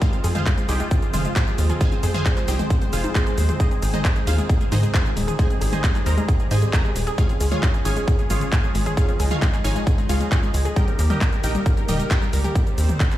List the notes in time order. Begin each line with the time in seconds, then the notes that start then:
0.01 F3 G#3 C4 F4 G#4 C5 F5, kick, closed hi-hat, shaker
0.13 C4 F4, closed hi-hat, shaker
0.24 F2 F4 G#4, open hi-hat, shaker
0.35 G#3 F4 G#4 C5 F5, closed hi-hat, mid tom, shaker
0.46 G3 F4, kick, clap, closed hi-hat, shaker
0.57 G#3 F4, closed hi-hat, shaker
0.69 C2 D#4 G4 G#4 C5 G5, open hi-hat, shaker
0.80 G#3 F4, closed hi-hat, shaker
0.91 C4 F4, kick, closed hi-hat, shaker
1.02 G#3 F4, closed hi-hat, shaker
1.13 F1 G#3 F4 G#4 C5 F5, open hi-hat, mid tom, shaker
1.25 G#3 F4, closed hi-hat, shaker
1.36 G#2 G4 G#4 C5 G5, kick, clap, closed hi-hat, shaker
1.47 G#3 F4, shaker
1.58 D#2 G#3 F4, open hi-hat, shaker
1.70 F4 G#4, closed hi-hat, mid tom, shaker
1.81 G#3 G#4 C5 F5 G#5, kick, closed hi-hat, shaker
1.92 C4 C5, closed hi-hat, shaker
2.03 F2 G#4 C5, open hi-hat, shaker
2.14 G#3 G#4 C5 F5 G#5, closed hi-hat, mid tom, shaker
2.26 G3 C5, kick, clap, closed hi-hat, shaker
2.37 G#3 C5, clap, closed hi-hat, shaker
2.48 C2 D#4 G4 G#4 C5 G5, open hi-hat, shaker
2.59 G#3 C5, closed hi-hat, mid tom, shaker
2.70 C4 C5, kick, closed hi-hat, swell, shaker
2.82 G#3 C5, closed hi-hat, shaker
2.93 F1 F4 G#4 C5 F5, open hi-hat, shaker
3.04 D#4 C5, closed hi-hat, shaker
3.15 G#3 C4 F4 G#4 C5, kick, clap, closed hi-hat, shaker
3.26 G#3 C5, closed hi-hat, shaker
3.38 D#2 G#3 C5, open hi-hat, shaker
3.49 G#3 C5, closed hi-hat, mid tom, shaker
3.60 D#3 G#3 D#4 G#4 C5 D#5, kick, closed hi-hat, shaker
3.71 C4 G#4, closed hi-hat, shaker
3.82 G#1 G#4, open hi-hat, shaker
3.93 G#3 D#4 G#4 C5 D#5, closed hi-hat, mid tom, shaker
4.05 G3 G#4, kick, clap, closed hi-hat, shaker
4.16 G#3 G#4, closed hi-hat, shaker
4.27 D#2 D#4 F4 G#4 C5 F5, open hi-hat, shaker
4.38 G#3 G#4, closed hi-hat, shaker
4.49 C4 G#4, kick, closed hi-hat, shaker
4.61 G#3 G#4, closed hi-hat, shaker
4.72 G#2 G#3 D#4 G#4 C5 D#5, open hi-hat, mid tom, shaker
4.83 G#3 G#4, closed hi-hat, shaker
4.94 G#2 F4 G#4 C5 F5, kick, clap, closed hi-hat, shaker
5.05 G#3 G#4, shaker
5.17 D#1 G#3 G#4, open hi-hat, shaker
5.28 G#4, closed hi-hat, mid tom, shaker
5.39 G3 G#3 G#4 C5 D#5 G#5, kick, closed hi-hat, shaker
5.50 C4 G#4, closed hi-hat, shaker
5.61 G#1 G#4, open hi-hat, shaker
5.73 G#3 G#4 C5 D#5 G#5, closed hi-hat, mid tom, shaker
5.84 G3 G#4, kick, clap, closed hi-hat, shaker
5.95 G#3 G#4, clap, closed hi-hat, shaker
6.06 D#2 D#4 A#4 C5 D#5 A#5, open hi-hat, shaker
6.17 G#3 G#4, closed hi-hat, shaker
6.29 C4 G#4, kick, closed hi-hat, shaker
6.40 G#3 G#4, closed hi-hat, shaker
6.51 G#2 G#3 G#4 C5 D#5 G#5, open hi-hat, shaker
6.62 G#3 G#4, closed hi-hat, shaker
6.73 G#2 A#4 C5 D#5 A#5, kick, clap, closed hi-hat, shaker
6.84 G#3 G#4, shaker
6.96 D#1 G#3 G#4, open hi-hat, shaker
7.07 G#4, closed hi-hat, shaker
7.18 F3 G#3 C#4 F4 G#4 C#5 F5, kick, closed hi-hat, shaker
7.29 C4 G#4, closed hi-hat, shaker
7.40 C#2 G#4, open hi-hat, shaker
7.52 G#3 F4 G#4 C#5 F5, closed hi-hat, mid tom, shaker
7.63 G3 G#4, kick, clap, closed hi-hat, shaker
7.74 G#3 G#4, closed hi-hat, shaker
7.85 G#1 D#4 G#4 C#5 F5 G#5, open hi-hat, shaker
7.96 G#3 G#4, closed hi-hat, shaker
8.08 C#4 G#4, kick, closed hi-hat, shaker
8.19 G#3 G#4, closed hi-hat, shaker
8.30 G#1 G#3 F4 G#4 C#5 F5, open hi-hat, mid tom, shaker
8.41 G#3 G#4, closed hi-hat, shaker
8.52 G#2 G#4 C#5 F5 G#5, kick, clap, closed hi-hat, shaker
8.64 G#3 G#4, shaker
8.75 G#1 G#3 G#4, open hi-hat, shaker
8.86 G#4, closed hi-hat, mid tom, shaker
8.97 G#3 D#4 F4 G#4 C#5 F5, kick, closed hi-hat, shaker
9.09 C4 G#4, closed hi-hat, shaker
9.20 C#2 G#4, open hi-hat, shaker
9.31 G#3 F4 G#4 C#5 F5, closed hi-hat, mid tom, shaker
9.42 G3 G#4, kick, clap, closed hi-hat, shaker
9.53 G#3 G#4, clap, closed hi-hat, shaker
9.64 G#1 D#4 G#4 C#5 F5 G#5, open hi-hat, shaker
9.76 G#3 G#4, closed hi-hat, shaker
9.87 C#4 G#4, kick, closed hi-hat, shaker
9.98 G#3 G#4, closed hi-hat, shaker
10.09 C#2 G#3 F4 G#4 C#5 F5, open hi-hat, shaker
10.20 G#3 G#4, closed hi-hat, shaker
10.32 G#2 C#4 F4 G#4 C#5, kick, clap, closed hi-hat, shaker
10.43 G#3 G#4, shaker
10.54 C#2 G#3 G#4, open hi-hat, shaker
10.65 G#4, closed hi-hat, shaker
10.76 D#3 G3 A#3 G4 A#4 D#5 G5, kick, closed hi-hat, shaker
10.88 C4 A#4, closed hi-hat, shaker
10.99 D#2 G4 A#4, open hi-hat, shaker
11.10 G3 G4 A#4 D#5 G5, closed hi-hat, mid tom, shaker
11.21 G3 A#4, kick, clap, closed hi-hat, shaker
11.32 G3 A#4, closed hi-hat, shaker
11.44 A#1 D#4 G4 A#4 D#5 G5, open hi-hat, shaker
11.55 G3 A#4, closed hi-hat, shaker
11.66 C#4 A#4, kick, closed hi-hat, shaker
11.77 G3 A#4, closed hi-hat, shaker
11.88 D#1 G3 G4 A#4 D#5 G5, open hi-hat, mid tom, shaker
12.00 G3 A#4, closed hi-hat, shaker
12.11 G2 G4 A#4 D#5 G5, kick, clap, closed hi-hat, shaker
12.22 G3 A#4, shaker
12.33 C#2 G3 A#4, open hi-hat, shaker
12.44 G4 A#4, closed hi-hat, mid tom, shaker
12.55 C4, kick, closed hi-hat, shaker
12.67 closed hi-hat, shaker
12.78 D#2, open hi-hat, shaker
12.89 closed hi-hat, mid tom, shaker
13.00 kick, clap, closed hi-hat, shaker
13.11 clap, closed hi-hat, shaker